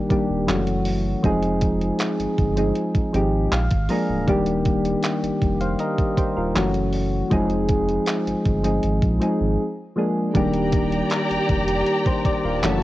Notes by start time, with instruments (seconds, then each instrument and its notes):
Already playing: synth keys D#3 G3 A#3 D4 G4
0.09 sub bass D#1, synth keys D#3 G3 A#3 D4 G4, kick, closed hi-hat
0.29 sub bass D#1
0.47 sub bass F#1, synth keys E3 F#3 G#3 C#4 F#4, clap, closed hi-hat
0.55 synth keys A3
0.67 closed hi-hat
0.85 open hi-hat
1.23 sub bass F1, synth keys F3 G#3 C4 D#4 G#4, kick, closed hi-hat
1.43 closed hi-hat
1.61 kick, closed hi-hat
1.81 closed hi-hat
1.99 clap, closed hi-hat
2.19 sub bass G1, closed hi-hat
2.38 sub bass G1, kick, closed hi-hat
2.56 synth keys F3 G#3 C4 D#4 G#4, closed hi-hat
2.75 closed hi-hat
2.95 sub bass G#1, kick, closed hi-hat
3.13 sub bass G#1, synth keys F3 G#3 C4 D#4 G4, closed hi-hat
3.52 sub bass A#1, synth keys F5, clap, closed hi-hat
3.71 sub bass G#1, kick, closed hi-hat
3.89 synth keys F3 G#3 A#3 D4 G#4 A#5, open hi-hat
4.09 sub bass D1
4.26 sub bass D#1, synth keys D#3 G3 A#3 D4 G4, kick, closed hi-hat
4.46 closed hi-hat
4.65 kick, closed hi-hat
4.85 closed hi-hat
5.03 clap, closed hi-hat
5.23 sub bass F1, closed hi-hat
5.42 sub bass F1, kick, closed hi-hat
5.61 synth keys C5 F5, closed hi-hat
5.79 synth keys A#4 D#5, closed hi-hat
5.98 kick, closed hi-hat
6.17 sub bass D#1, synth keys G4 C5, kick, closed hi-hat
6.37 sub bass D#1, synth keys F4 A#4
6.55 sub bass F#1, synth keys E3 F#3 A3 C#4 F#4, clap, closed hi-hat
6.74 closed hi-hat
6.93 open hi-hat
7.30 sub bass F1, synth keys F3 G#3 C4 D#4 G#4, kick, closed hi-hat
7.50 closed hi-hat
7.69 kick, closed hi-hat
7.89 closed hi-hat
8.06 clap, closed hi-hat
8.27 sub bass G1, closed hi-hat
8.45 sub bass G1, kick, closed hi-hat
8.63 synth keys F3 G#3 C4 D#4 G#4, closed hi-hat
8.83 sub bass G#1, closed hi-hat
9.02 sub bass A#1, kick, closed hi-hat
9.20 synth keys F3 G#3 C4 D#4 G#4, closed hi-hat
9.41 sub bass G#1
9.96 synth keys F3 G#3 A#3 D4 G#4
10.34 sub bass D#1, synth keys D#3 G3 A#3 D4 G4, string section G4 D5 G5 A#5, kick, closed hi-hat
10.54 closed hi-hat
10.73 kick, closed hi-hat
10.92 closed hi-hat
11.10 clap, closed hi-hat
11.30 sub bass F1, closed hi-hat
11.49 sub bass F1, kick, closed hi-hat
11.68 closed hi-hat
11.86 closed hi-hat
12.06 synth keys G4 C5, kick, closed hi-hat
12.25 sub bass D#1, synth keys G4 D5, kick, closed hi-hat
12.44 sub bass D#1, synth keys F4 A#4
12.62 sub bass F#1, synth keys E3 F#3 A3 C#4 F#4, string section F#4 C#5 E5 A5, clap, closed hi-hat